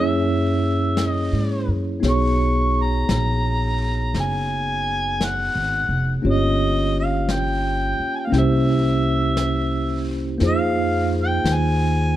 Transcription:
0.00 1.28 F#2 medium
0.00 2.02 A#3 soft
0.00 2.02 C#4 soft
0.00 2.02 E4 soft
0.00 2.02 G#4 soft
0.00 2.03 C#5 soft
0.00 1.08 E5 medium
0.97 brush sweep soft
0.97 snare soft
0.97 hi-hat pedal soft
1.08 1.69 D#5 medium
1.33 1.65 G#2 soft
1.68 2.01 F#2 soft
2.00 3.05 B1 medium
2.00 6.23 B3 soft
2.00 6.24 D#4 soft
2.00 6.24 F#4 soft
2.00 brush sweep soft
2.00 snare soft
2.04 6.25 G#4 soft
2.04 6.25 C#5 soft
2.09 2.84 C#6 medium
2.83 4.18 A#5 medium
3.09 4.11 A#1 medium
3.09 brush sweep soft
3.09 snare soft
3.09 hi-hat pedal soft
4.14 5.51 F#1 medium
4.14 brush sweep soft
4.14 snare soft
4.20 5.27 G#5 medium
5.21 brush sweep soft
5.21 snare soft
5.21 hi-hat pedal soft
5.25 6.11 F#5 medium
5.55 5.88 G#1 soft
5.89 6.22 F1 medium
6.22 7.96 G1 medium
6.22 8.26 A#3 soft
6.22 8.29 C#4 soft
6.22 8.32 F4 soft
6.22 8.33 G4 soft
6.22 brush sweep soft
6.26 8.34 C#5 soft
6.26 6.95 D#5 medium
6.99 7.33 F5 medium
7.29 8.17 G5 medium
7.29 brush sweep soft
7.29 snare soft
7.29 hi-hat pedal soft
8.00 muted upright bass stroke soft
8.16 8.27 G5 medium
8.16 8.21 G#5 medium
8.26 10.37 A#3 soft
8.26 8.34 F5 medium
8.30 10.36 C2 medium
8.30 10.39 C#4 soft
8.30 10.41 E4 soft
8.30 8.36 G5 medium
8.30 brush sweep soft
8.30 snare soft
8.36 10.42 G4 soft
8.36 10.42 C5 medium
8.36 10.07 E5 medium
9.37 brush sweep soft
9.37 snare soft
9.37 hi-hat pedal soft
10.38 11.41 F2 medium
10.38 12.16 A#3 soft
10.38 12.16 D#4 soft
10.38 12.16 F4 soft
10.38 brush sweep soft
10.38 snare soft
10.43 12.16 G#4 soft
10.43 12.16 C5 medium
10.47 11.12 F5 medium
11.23 11.55 G5 medium
11.44 12.16 D#2 medium
11.44 brush sweep soft
11.44 snare soft
11.44 hi-hat pedal soft
11.54 12.16 G#5 medium

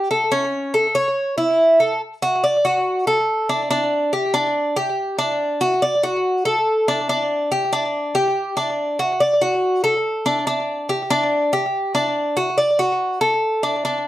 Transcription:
0.11 0.31 A4 medium
0.32 0.73 C#4 medium
0.74 0.95 A4 medium
0.95 1.36 C#5 medium
1.38 1.79 E4 medium
1.80 2.01 A4 medium
2.22 2.43 F#4 medium
2.44 2.64 D5 medium
2.65 3.06 F#4 medium
3.07 3.48 A4 medium
3.49 3.69 D4 medium
3.71 4.12 D4 medium
4.13 4.33 G4 medium
4.34 4.75 D4 medium
4.76 5.17 G4 medium
5.19 5.60 D4 medium
5.61 5.81 F#4 medium
5.82 6.03 D5 medium
6.03 6.44 F#4 medium
6.45 6.86 A4 medium
6.88 7.08 D4 medium
7.09 7.50 D4 medium
7.52 7.72 G4 medium
7.73 8.13 D4 medium
8.15 8.56 G4 medium
8.57 8.98 D4 medium
8.99 9.20 F#4 medium
9.20 9.41 D5 medium
9.42 9.82 F#4 medium
9.84 10.24 A4 medium
10.26 10.46 D4 medium
10.47 10.88 D4 medium
10.89 11.10 G4 medium
11.11 11.51 D4 loud
11.53 11.93 G4 medium
11.95 12.35 D4 medium
12.37 12.57 F#4 medium
12.58 12.78 D5 medium
12.79 13.20 F#4 medium
13.21 13.62 A4 medium
13.63 13.83 D4 medium
13.85 14.08 D4 medium

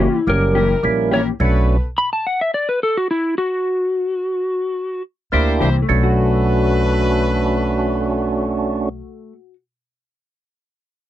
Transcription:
0.00 0.18 E3 medium
0.00 0.17 A#3 medium
0.00 0.17 C#4 medium
0.00 0.18 F#4 medium
0.00 0.17 G4 medium
0.18 0.30 E4 medium
0.27 0.73 F#1 medium
0.27 0.64 G3 medium
0.27 0.64 A#3 medium
0.27 0.65 C#4 medium
0.27 0.65 G4 medium
0.27 1.09 A#4 medium
0.54 0.74 E3 medium
0.54 0.73 A#3 medium
0.54 0.73 C#4 medium
0.54 0.83 E4 medium
0.54 0.73 G4 medium
0.54 0.84 G4 medium
0.54 0.84 A#4 medium
0.83 1.29 A#1 medium
0.83 1.20 G3 medium
0.83 1.21 A#3 medium
0.83 1.21 C#4 medium
0.83 1.21 E4 medium
1.11 1.30 E3 medium
1.11 1.30 A#3 medium
1.11 1.29 C#4 medium
1.11 1.26 E4 medium
1.11 1.29 G4 medium
1.11 1.27 G4 medium
1.11 1.27 A#4 medium
1.11 1.21 C#5 medium
1.40 1.77 B1 loud
1.40 1.77 A3 medium
1.40 1.85 B3 medium
1.40 1.77 C#4 medium
1.40 1.77 D4 medium
1.40 1.77 F#4 medium
1.40 1.85 A4 medium
1.40 1.86 B4 medium
1.98 2.11 B5 loud
2.13 2.25 A5 medium
2.27 2.40 F#5 medium
2.41 2.53 E5 medium
2.54 2.67 D5 loud
2.69 2.81 B4 medium
2.83 2.96 A4 medium
2.97 3.09 F#4 medium
3.11 3.37 E4 medium
3.38 5.02 F#4 loud
5.32 5.58 D2 medium
5.32 5.69 A#3 medium
5.32 5.69 D4 medium
5.32 5.55 E4 medium
5.32 5.70 E4 medium
5.32 5.70 G4 medium
5.32 5.55 A#4 medium
5.32 5.56 C5 medium
5.60 5.86 C2 medium
5.60 5.79 E3 medium
5.60 5.79 A#3 medium
5.60 5.78 C4 medium
5.60 5.75 E4 medium
5.60 5.78 G4 medium
5.60 5.75 A#4 medium
5.60 5.76 C5 medium
5.82 9.32 A3 medium
5.88 9.00 B1 medium
5.88 8.89 A3 medium
5.88 8.89 C#4 medium
5.88 8.89 D4 medium
5.88 8.89 F#4 medium
5.88 8.89 A4 medium
5.88 8.89 B4 loud
6.03 9.53 F#4 medium

